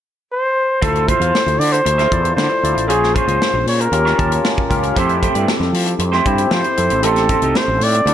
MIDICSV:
0, 0, Header, 1, 7, 480
1, 0, Start_track
1, 0, Key_signature, -1, "minor"
1, 0, Tempo, 518135
1, 762, Time_signature, 4, 2, 24, 8
1, 7540, End_track
2, 0, Start_track
2, 0, Title_t, "Flugelhorn"
2, 0, Program_c, 0, 56
2, 297, Note_on_c, 0, 72, 86
2, 765, Note_on_c, 0, 69, 88
2, 779, Note_off_c, 0, 72, 0
2, 1009, Note_on_c, 0, 72, 95
2, 1023, Note_off_c, 0, 69, 0
2, 1474, Note_on_c, 0, 74, 92
2, 1488, Note_off_c, 0, 72, 0
2, 1596, Note_on_c, 0, 72, 103
2, 1610, Note_off_c, 0, 74, 0
2, 2175, Note_off_c, 0, 72, 0
2, 2180, Note_on_c, 0, 72, 93
2, 2668, Note_on_c, 0, 68, 82
2, 2682, Note_off_c, 0, 72, 0
2, 2920, Note_on_c, 0, 72, 94
2, 2934, Note_off_c, 0, 68, 0
2, 3401, Note_off_c, 0, 72, 0
2, 3412, Note_on_c, 0, 73, 79
2, 3528, Note_on_c, 0, 70, 84
2, 3542, Note_off_c, 0, 73, 0
2, 4365, Note_off_c, 0, 70, 0
2, 6049, Note_on_c, 0, 72, 92
2, 6539, Note_on_c, 0, 69, 90
2, 6553, Note_off_c, 0, 72, 0
2, 7012, Note_on_c, 0, 72, 87
2, 7026, Note_off_c, 0, 69, 0
2, 7256, Note_on_c, 0, 74, 105
2, 7270, Note_off_c, 0, 72, 0
2, 7540, Note_off_c, 0, 74, 0
2, 7540, End_track
3, 0, Start_track
3, 0, Title_t, "Clean electric guitar"
3, 0, Program_c, 1, 27
3, 756, Note_on_c, 1, 65, 77
3, 760, Note_on_c, 1, 69, 75
3, 767, Note_on_c, 1, 72, 77
3, 770, Note_on_c, 1, 76, 88
3, 951, Note_off_c, 1, 65, 0
3, 953, Note_off_c, 1, 69, 0
3, 957, Note_off_c, 1, 72, 0
3, 958, Note_off_c, 1, 76, 0
3, 1003, Note_on_c, 1, 65, 61
3, 1007, Note_on_c, 1, 69, 57
3, 1014, Note_on_c, 1, 72, 62
3, 1016, Note_on_c, 1, 76, 58
3, 1114, Note_off_c, 1, 76, 0
3, 1115, Note_off_c, 1, 72, 0
3, 1117, Note_off_c, 1, 69, 0
3, 1118, Note_on_c, 1, 77, 54
3, 1120, Note_off_c, 1, 65, 0
3, 1126, Note_on_c, 1, 72, 53
3, 1128, Note_on_c, 1, 69, 47
3, 1131, Note_on_c, 1, 65, 49
3, 1232, Note_off_c, 1, 65, 0
3, 1236, Note_off_c, 1, 69, 0
3, 1238, Note_off_c, 1, 72, 0
3, 1250, Note_off_c, 1, 77, 0
3, 1836, Note_on_c, 1, 76, 76
3, 1842, Note_on_c, 1, 72, 69
3, 1847, Note_on_c, 1, 69, 69
3, 1850, Note_on_c, 1, 65, 67
3, 1945, Note_off_c, 1, 65, 0
3, 1947, Note_off_c, 1, 69, 0
3, 1948, Note_off_c, 1, 72, 0
3, 1952, Note_off_c, 1, 76, 0
3, 2670, Note_on_c, 1, 58, 74
3, 2676, Note_on_c, 1, 65, 81
3, 2680, Note_on_c, 1, 68, 79
3, 2685, Note_on_c, 1, 73, 85
3, 2868, Note_off_c, 1, 58, 0
3, 2871, Note_off_c, 1, 65, 0
3, 2873, Note_off_c, 1, 68, 0
3, 2875, Note_off_c, 1, 73, 0
3, 2909, Note_on_c, 1, 58, 64
3, 2918, Note_on_c, 1, 65, 65
3, 2921, Note_on_c, 1, 68, 73
3, 2928, Note_on_c, 1, 73, 75
3, 3027, Note_off_c, 1, 68, 0
3, 3030, Note_off_c, 1, 73, 0
3, 3031, Note_off_c, 1, 65, 0
3, 3034, Note_on_c, 1, 75, 59
3, 3038, Note_off_c, 1, 58, 0
3, 3038, Note_on_c, 1, 68, 52
3, 3042, Note_on_c, 1, 65, 56
3, 3049, Note_on_c, 1, 58, 49
3, 3144, Note_off_c, 1, 58, 0
3, 3145, Note_off_c, 1, 65, 0
3, 3149, Note_off_c, 1, 68, 0
3, 3158, Note_off_c, 1, 75, 0
3, 3753, Note_on_c, 1, 73, 74
3, 3758, Note_on_c, 1, 67, 76
3, 3762, Note_on_c, 1, 65, 70
3, 3765, Note_on_c, 1, 58, 62
3, 3864, Note_off_c, 1, 58, 0
3, 3866, Note_off_c, 1, 65, 0
3, 3869, Note_off_c, 1, 67, 0
3, 3874, Note_off_c, 1, 73, 0
3, 4590, Note_on_c, 1, 57, 78
3, 4595, Note_on_c, 1, 64, 80
3, 4602, Note_on_c, 1, 67, 80
3, 4608, Note_on_c, 1, 72, 94
3, 4788, Note_off_c, 1, 57, 0
3, 4790, Note_off_c, 1, 64, 0
3, 4794, Note_off_c, 1, 67, 0
3, 4797, Note_off_c, 1, 72, 0
3, 4830, Note_on_c, 1, 57, 64
3, 4838, Note_on_c, 1, 64, 66
3, 4840, Note_on_c, 1, 67, 75
3, 4844, Note_on_c, 1, 72, 67
3, 4943, Note_off_c, 1, 67, 0
3, 4943, Note_off_c, 1, 72, 0
3, 4947, Note_off_c, 1, 64, 0
3, 4947, Note_on_c, 1, 74, 61
3, 4952, Note_off_c, 1, 57, 0
3, 4954, Note_on_c, 1, 67, 63
3, 4959, Note_on_c, 1, 64, 53
3, 4963, Note_on_c, 1, 57, 53
3, 5063, Note_off_c, 1, 57, 0
3, 5065, Note_off_c, 1, 64, 0
3, 5068, Note_off_c, 1, 67, 0
3, 5081, Note_off_c, 1, 74, 0
3, 5668, Note_on_c, 1, 72, 72
3, 5676, Note_on_c, 1, 67, 77
3, 5682, Note_on_c, 1, 57, 62
3, 5682, Note_on_c, 1, 64, 67
3, 5783, Note_off_c, 1, 57, 0
3, 5787, Note_off_c, 1, 64, 0
3, 5790, Note_off_c, 1, 67, 0
3, 5795, Note_off_c, 1, 72, 0
3, 6517, Note_on_c, 1, 57, 82
3, 6523, Note_on_c, 1, 63, 71
3, 6531, Note_on_c, 1, 67, 87
3, 6532, Note_on_c, 1, 72, 81
3, 6711, Note_off_c, 1, 57, 0
3, 6714, Note_off_c, 1, 63, 0
3, 6718, Note_off_c, 1, 67, 0
3, 6719, Note_off_c, 1, 72, 0
3, 6752, Note_on_c, 1, 57, 70
3, 6758, Note_on_c, 1, 63, 70
3, 6762, Note_on_c, 1, 67, 73
3, 6767, Note_on_c, 1, 72, 71
3, 6872, Note_off_c, 1, 67, 0
3, 6872, Note_off_c, 1, 72, 0
3, 6874, Note_off_c, 1, 63, 0
3, 6876, Note_on_c, 1, 75, 58
3, 6882, Note_off_c, 1, 57, 0
3, 6883, Note_on_c, 1, 67, 63
3, 6885, Note_on_c, 1, 63, 49
3, 6893, Note_on_c, 1, 57, 46
3, 6988, Note_off_c, 1, 57, 0
3, 6990, Note_off_c, 1, 63, 0
3, 6993, Note_off_c, 1, 67, 0
3, 7005, Note_off_c, 1, 75, 0
3, 7540, End_track
4, 0, Start_track
4, 0, Title_t, "Tine electric piano"
4, 0, Program_c, 2, 4
4, 759, Note_on_c, 2, 64, 66
4, 764, Note_on_c, 2, 65, 58
4, 769, Note_on_c, 2, 69, 62
4, 769, Note_on_c, 2, 72, 73
4, 952, Control_c, 2, 64, 127
4, 1627, Note_off_c, 2, 64, 0
4, 1629, Note_off_c, 2, 65, 0
4, 1631, Note_off_c, 2, 69, 0
4, 1632, Note_off_c, 2, 72, 0
4, 1964, Note_on_c, 2, 64, 69
4, 1966, Note_on_c, 2, 65, 67
4, 1971, Note_on_c, 2, 69, 64
4, 1974, Note_on_c, 2, 74, 74
4, 2396, Note_off_c, 2, 64, 0
4, 2397, Note_off_c, 2, 65, 0
4, 2400, Note_off_c, 2, 69, 0
4, 2401, Note_off_c, 2, 74, 0
4, 2436, Note_on_c, 2, 64, 59
4, 2439, Note_on_c, 2, 65, 56
4, 2443, Note_on_c, 2, 69, 55
4, 2451, Note_on_c, 2, 74, 62
4, 2656, Note_off_c, 2, 64, 0
4, 2657, Note_off_c, 2, 65, 0
4, 2659, Note_off_c, 2, 69, 0
4, 2663, Note_off_c, 2, 74, 0
4, 2679, Note_on_c, 2, 61, 67
4, 2681, Note_on_c, 2, 65, 63
4, 2684, Note_on_c, 2, 68, 62
4, 2689, Note_on_c, 2, 72, 75
4, 2694, Control_c, 2, 64, 0
4, 2833, Control_c, 2, 64, 127
4, 3546, Note_off_c, 2, 61, 0
4, 3547, Note_off_c, 2, 65, 0
4, 3549, Note_off_c, 2, 68, 0
4, 3551, Note_off_c, 2, 72, 0
4, 3632, Note_on_c, 2, 61, 74
4, 3639, Note_on_c, 2, 65, 65
4, 3639, Note_on_c, 2, 67, 66
4, 3645, Note_on_c, 2, 70, 80
4, 3651, Control_c, 2, 64, 0
4, 3806, Control_c, 2, 64, 127
4, 3853, Note_off_c, 2, 61, 0
4, 3857, Note_off_c, 2, 65, 0
4, 3857, Note_off_c, 2, 67, 0
4, 3860, Note_off_c, 2, 70, 0
4, 3870, Note_on_c, 2, 61, 70
4, 3874, Note_on_c, 2, 65, 61
4, 3877, Note_on_c, 2, 67, 64
4, 3881, Note_on_c, 2, 81, 76
4, 4308, Note_off_c, 2, 61, 0
4, 4311, Note_off_c, 2, 65, 0
4, 4312, Note_off_c, 2, 67, 0
4, 4314, Note_off_c, 2, 81, 0
4, 4351, Note_on_c, 2, 61, 75
4, 4351, Note_on_c, 2, 65, 70
4, 4359, Note_on_c, 2, 70, 82
4, 4360, Note_on_c, 2, 67, 67
4, 4573, Note_off_c, 2, 61, 0
4, 4573, Note_off_c, 2, 65, 0
4, 4577, Note_off_c, 2, 67, 0
4, 4577, Note_off_c, 2, 70, 0
4, 4595, Note_on_c, 2, 60, 87
4, 4596, Note_on_c, 2, 64, 77
4, 4599, Note_on_c, 2, 67, 77
4, 4605, Note_on_c, 2, 69, 91
4, 4615, Control_c, 2, 64, 0
4, 4792, Control_c, 2, 64, 127
4, 5464, Note_off_c, 2, 60, 0
4, 5465, Note_off_c, 2, 64, 0
4, 5466, Note_off_c, 2, 67, 0
4, 5469, Note_off_c, 2, 69, 0
4, 5796, Note_on_c, 2, 60, 89
4, 5800, Note_on_c, 2, 64, 76
4, 5805, Note_on_c, 2, 67, 80
4, 5806, Note_on_c, 2, 72, 86
4, 6232, Note_off_c, 2, 60, 0
4, 6234, Note_off_c, 2, 64, 0
4, 6236, Note_off_c, 2, 67, 0
4, 6237, Note_off_c, 2, 72, 0
4, 6273, Note_on_c, 2, 60, 58
4, 6279, Note_on_c, 2, 64, 58
4, 6280, Note_on_c, 2, 67, 57
4, 6285, Note_on_c, 2, 69, 65
4, 6494, Note_off_c, 2, 60, 0
4, 6497, Note_off_c, 2, 64, 0
4, 6497, Note_off_c, 2, 67, 0
4, 6500, Note_off_c, 2, 69, 0
4, 6508, Note_on_c, 2, 60, 70
4, 6512, Note_on_c, 2, 63, 65
4, 6519, Note_on_c, 2, 67, 59
4, 6521, Note_on_c, 2, 69, 77
4, 6531, Control_c, 2, 64, 0
4, 6713, Control_c, 2, 64, 127
4, 7381, Note_off_c, 2, 60, 0
4, 7383, Note_off_c, 2, 63, 0
4, 7386, Note_off_c, 2, 67, 0
4, 7387, Note_off_c, 2, 69, 0
4, 7477, Note_on_c, 2, 60, 73
4, 7481, Note_on_c, 2, 64, 65
4, 7482, Note_on_c, 2, 66, 59
4, 7491, Note_on_c, 2, 69, 72
4, 7495, Control_c, 2, 64, 0
4, 7540, Note_off_c, 2, 60, 0
4, 7540, Note_off_c, 2, 64, 0
4, 7540, Note_off_c, 2, 66, 0
4, 7540, Note_off_c, 2, 69, 0
4, 7540, End_track
5, 0, Start_track
5, 0, Title_t, "Fretless electric bass"
5, 0, Program_c, 3, 35
5, 762, Note_on_c, 3, 38, 82
5, 1038, Note_off_c, 3, 38, 0
5, 1110, Note_on_c, 3, 40, 81
5, 1207, Note_off_c, 3, 40, 0
5, 1356, Note_on_c, 3, 38, 82
5, 1451, Note_off_c, 3, 38, 0
5, 1476, Note_on_c, 3, 50, 89
5, 1662, Note_off_c, 3, 50, 0
5, 1720, Note_on_c, 3, 38, 94
5, 1904, Note_off_c, 3, 38, 0
5, 1958, Note_on_c, 3, 40, 85
5, 2143, Note_off_c, 3, 40, 0
5, 2193, Note_on_c, 3, 50, 92
5, 2288, Note_off_c, 3, 50, 0
5, 2440, Note_on_c, 3, 38, 83
5, 2532, Note_off_c, 3, 38, 0
5, 2557, Note_on_c, 3, 33, 82
5, 2672, Note_off_c, 3, 33, 0
5, 2672, Note_on_c, 3, 34, 96
5, 2952, Note_off_c, 3, 34, 0
5, 3034, Note_on_c, 3, 37, 83
5, 3129, Note_off_c, 3, 37, 0
5, 3275, Note_on_c, 3, 34, 88
5, 3370, Note_off_c, 3, 34, 0
5, 3393, Note_on_c, 3, 46, 92
5, 3580, Note_off_c, 3, 46, 0
5, 3628, Note_on_c, 3, 39, 94
5, 3817, Note_off_c, 3, 39, 0
5, 3876, Note_on_c, 3, 39, 89
5, 4062, Note_off_c, 3, 39, 0
5, 4359, Note_on_c, 3, 37, 83
5, 4544, Note_off_c, 3, 37, 0
5, 4598, Note_on_c, 3, 41, 94
5, 4875, Note_off_c, 3, 41, 0
5, 4956, Note_on_c, 3, 43, 78
5, 5050, Note_off_c, 3, 43, 0
5, 5186, Note_on_c, 3, 41, 87
5, 5284, Note_off_c, 3, 41, 0
5, 5307, Note_on_c, 3, 53, 90
5, 5496, Note_off_c, 3, 53, 0
5, 5547, Note_on_c, 3, 41, 90
5, 5737, Note_off_c, 3, 41, 0
5, 5794, Note_on_c, 3, 43, 86
5, 5981, Note_off_c, 3, 43, 0
5, 6033, Note_on_c, 3, 53, 85
5, 6128, Note_off_c, 3, 53, 0
5, 6282, Note_on_c, 3, 41, 85
5, 6374, Note_off_c, 3, 41, 0
5, 6401, Note_on_c, 3, 32, 85
5, 6517, Note_off_c, 3, 32, 0
5, 6517, Note_on_c, 3, 33, 83
5, 6794, Note_off_c, 3, 33, 0
5, 6875, Note_on_c, 3, 36, 80
5, 6969, Note_off_c, 3, 36, 0
5, 7114, Note_on_c, 3, 33, 89
5, 7208, Note_off_c, 3, 33, 0
5, 7229, Note_on_c, 3, 45, 93
5, 7417, Note_off_c, 3, 45, 0
5, 7463, Note_on_c, 3, 38, 110
5, 7540, Note_off_c, 3, 38, 0
5, 7540, End_track
6, 0, Start_track
6, 0, Title_t, "Muted clean electric guitar strokes"
6, 1244, Note_on_c, 9, 29, 31
6, 1336, Note_off_c, 9, 29, 0
6, 1356, Note_on_c, 9, 29, 38
6, 1449, Note_off_c, 9, 29, 0
6, 1599, Note_on_c, 9, 29, 44
6, 1692, Note_off_c, 9, 29, 0
6, 1715, Note_on_c, 9, 29, 42
6, 1807, Note_off_c, 9, 29, 0
6, 1956, Note_on_c, 9, 29, 39
6, 2049, Note_off_c, 9, 29, 0
6, 2076, Note_on_c, 9, 29, 40
6, 2169, Note_off_c, 9, 29, 0
6, 2193, Note_on_c, 9, 29, 31
6, 2286, Note_off_c, 9, 29, 0
6, 2315, Note_on_c, 9, 29, 39
6, 2407, Note_off_c, 9, 29, 0
6, 2551, Note_on_c, 9, 29, 35
6, 2643, Note_off_c, 9, 29, 0
6, 3155, Note_on_c, 9, 29, 34
6, 3248, Note_off_c, 9, 29, 0
6, 3280, Note_on_c, 9, 29, 37
6, 3373, Note_off_c, 9, 29, 0
6, 3516, Note_on_c, 9, 29, 41
6, 3608, Note_off_c, 9, 29, 0
6, 3634, Note_on_c, 9, 29, 45
6, 3727, Note_off_c, 9, 29, 0
6, 3875, Note_on_c, 9, 29, 35
6, 3968, Note_off_c, 9, 29, 0
6, 3993, Note_on_c, 9, 29, 40
6, 4085, Note_off_c, 9, 29, 0
6, 4112, Note_on_c, 9, 29, 30
6, 4205, Note_off_c, 9, 29, 0
6, 4230, Note_on_c, 9, 29, 49
6, 4322, Note_off_c, 9, 29, 0
6, 4475, Note_on_c, 9, 29, 43
6, 4567, Note_off_c, 9, 29, 0
6, 5074, Note_on_c, 9, 29, 43
6, 5167, Note_off_c, 9, 29, 0
6, 5193, Note_on_c, 9, 29, 42
6, 5285, Note_off_c, 9, 29, 0
6, 5431, Note_on_c, 9, 29, 47
6, 5524, Note_off_c, 9, 29, 0
6, 5553, Note_on_c, 9, 29, 38
6, 5645, Note_off_c, 9, 29, 0
6, 5794, Note_on_c, 9, 29, 37
6, 5887, Note_off_c, 9, 29, 0
6, 5914, Note_on_c, 9, 29, 40
6, 6007, Note_off_c, 9, 29, 0
6, 6034, Note_on_c, 9, 29, 34
6, 6127, Note_off_c, 9, 29, 0
6, 6159, Note_on_c, 9, 29, 48
6, 6252, Note_off_c, 9, 29, 0
6, 6401, Note_on_c, 9, 29, 46
6, 6494, Note_off_c, 9, 29, 0
6, 6999, Note_on_c, 9, 29, 41
6, 7092, Note_off_c, 9, 29, 0
6, 7114, Note_on_c, 9, 29, 39
6, 7206, Note_off_c, 9, 29, 0
6, 7352, Note_on_c, 9, 29, 42
6, 7444, Note_off_c, 9, 29, 0
6, 7466, Note_on_c, 9, 29, 32
6, 7540, Note_off_c, 9, 29, 0
6, 7540, End_track
7, 0, Start_track
7, 0, Title_t, "Drums"
7, 764, Note_on_c, 9, 36, 90
7, 767, Note_on_c, 9, 42, 80
7, 857, Note_off_c, 9, 36, 0
7, 860, Note_off_c, 9, 42, 0
7, 884, Note_on_c, 9, 42, 34
7, 977, Note_off_c, 9, 42, 0
7, 1005, Note_on_c, 9, 36, 79
7, 1007, Note_on_c, 9, 42, 65
7, 1098, Note_off_c, 9, 36, 0
7, 1100, Note_off_c, 9, 42, 0
7, 1125, Note_on_c, 9, 42, 50
7, 1217, Note_off_c, 9, 42, 0
7, 1251, Note_on_c, 9, 38, 96
7, 1344, Note_off_c, 9, 38, 0
7, 1368, Note_on_c, 9, 42, 34
7, 1461, Note_off_c, 9, 42, 0
7, 1491, Note_on_c, 9, 46, 70
7, 1583, Note_off_c, 9, 46, 0
7, 1610, Note_on_c, 9, 42, 43
7, 1703, Note_off_c, 9, 42, 0
7, 1724, Note_on_c, 9, 42, 75
7, 1817, Note_off_c, 9, 42, 0
7, 1844, Note_on_c, 9, 42, 30
7, 1845, Note_on_c, 9, 38, 31
7, 1936, Note_off_c, 9, 42, 0
7, 1938, Note_off_c, 9, 38, 0
7, 1963, Note_on_c, 9, 36, 83
7, 1966, Note_on_c, 9, 42, 49
7, 2056, Note_off_c, 9, 36, 0
7, 2059, Note_off_c, 9, 42, 0
7, 2084, Note_on_c, 9, 42, 47
7, 2177, Note_off_c, 9, 42, 0
7, 2208, Note_on_c, 9, 38, 118
7, 2301, Note_off_c, 9, 38, 0
7, 2450, Note_on_c, 9, 42, 57
7, 2542, Note_off_c, 9, 42, 0
7, 2572, Note_on_c, 9, 42, 48
7, 2664, Note_off_c, 9, 42, 0
7, 2684, Note_on_c, 9, 42, 86
7, 2777, Note_off_c, 9, 42, 0
7, 2813, Note_on_c, 9, 38, 34
7, 2905, Note_off_c, 9, 38, 0
7, 2925, Note_on_c, 9, 36, 79
7, 2926, Note_on_c, 9, 42, 60
7, 3017, Note_off_c, 9, 36, 0
7, 3019, Note_off_c, 9, 42, 0
7, 3041, Note_on_c, 9, 42, 47
7, 3134, Note_off_c, 9, 42, 0
7, 3167, Note_on_c, 9, 38, 93
7, 3259, Note_off_c, 9, 38, 0
7, 3403, Note_on_c, 9, 46, 70
7, 3496, Note_off_c, 9, 46, 0
7, 3527, Note_on_c, 9, 42, 43
7, 3620, Note_off_c, 9, 42, 0
7, 3637, Note_on_c, 9, 42, 70
7, 3730, Note_off_c, 9, 42, 0
7, 3763, Note_on_c, 9, 38, 33
7, 3856, Note_off_c, 9, 38, 0
7, 3882, Note_on_c, 9, 36, 85
7, 3886, Note_on_c, 9, 42, 49
7, 3975, Note_off_c, 9, 36, 0
7, 3979, Note_off_c, 9, 42, 0
7, 3999, Note_on_c, 9, 42, 49
7, 4092, Note_off_c, 9, 42, 0
7, 4121, Note_on_c, 9, 38, 115
7, 4213, Note_off_c, 9, 38, 0
7, 4242, Note_on_c, 9, 36, 82
7, 4335, Note_off_c, 9, 36, 0
7, 4360, Note_on_c, 9, 36, 92
7, 4364, Note_on_c, 9, 42, 56
7, 4453, Note_off_c, 9, 36, 0
7, 4456, Note_off_c, 9, 42, 0
7, 4478, Note_on_c, 9, 42, 45
7, 4571, Note_off_c, 9, 42, 0
7, 4599, Note_on_c, 9, 42, 82
7, 4600, Note_on_c, 9, 36, 96
7, 4692, Note_off_c, 9, 36, 0
7, 4692, Note_off_c, 9, 42, 0
7, 4717, Note_on_c, 9, 42, 33
7, 4810, Note_off_c, 9, 42, 0
7, 4842, Note_on_c, 9, 36, 75
7, 4843, Note_on_c, 9, 42, 64
7, 4935, Note_off_c, 9, 36, 0
7, 4935, Note_off_c, 9, 42, 0
7, 4956, Note_on_c, 9, 42, 49
7, 5049, Note_off_c, 9, 42, 0
7, 5081, Note_on_c, 9, 38, 98
7, 5173, Note_off_c, 9, 38, 0
7, 5205, Note_on_c, 9, 38, 33
7, 5298, Note_off_c, 9, 38, 0
7, 5321, Note_on_c, 9, 46, 74
7, 5414, Note_off_c, 9, 46, 0
7, 5441, Note_on_c, 9, 42, 43
7, 5534, Note_off_c, 9, 42, 0
7, 5553, Note_on_c, 9, 42, 73
7, 5646, Note_off_c, 9, 42, 0
7, 5677, Note_on_c, 9, 38, 34
7, 5769, Note_off_c, 9, 38, 0
7, 5797, Note_on_c, 9, 36, 85
7, 5798, Note_on_c, 9, 42, 47
7, 5890, Note_off_c, 9, 36, 0
7, 5891, Note_off_c, 9, 42, 0
7, 5911, Note_on_c, 9, 42, 52
7, 6004, Note_off_c, 9, 42, 0
7, 6032, Note_on_c, 9, 38, 116
7, 6125, Note_off_c, 9, 38, 0
7, 6153, Note_on_c, 9, 42, 34
7, 6245, Note_off_c, 9, 42, 0
7, 6276, Note_on_c, 9, 42, 60
7, 6369, Note_off_c, 9, 42, 0
7, 6392, Note_on_c, 9, 42, 44
7, 6485, Note_off_c, 9, 42, 0
7, 6512, Note_on_c, 9, 42, 87
7, 6604, Note_off_c, 9, 42, 0
7, 6633, Note_on_c, 9, 42, 32
7, 6638, Note_on_c, 9, 38, 35
7, 6726, Note_off_c, 9, 42, 0
7, 6731, Note_off_c, 9, 38, 0
7, 6753, Note_on_c, 9, 42, 68
7, 6756, Note_on_c, 9, 36, 80
7, 6846, Note_off_c, 9, 42, 0
7, 6849, Note_off_c, 9, 36, 0
7, 6871, Note_on_c, 9, 42, 49
7, 6964, Note_off_c, 9, 42, 0
7, 6998, Note_on_c, 9, 38, 98
7, 7090, Note_off_c, 9, 38, 0
7, 7237, Note_on_c, 9, 46, 74
7, 7329, Note_off_c, 9, 46, 0
7, 7359, Note_on_c, 9, 42, 45
7, 7452, Note_off_c, 9, 42, 0
7, 7476, Note_on_c, 9, 42, 76
7, 7540, Note_off_c, 9, 42, 0
7, 7540, End_track
0, 0, End_of_file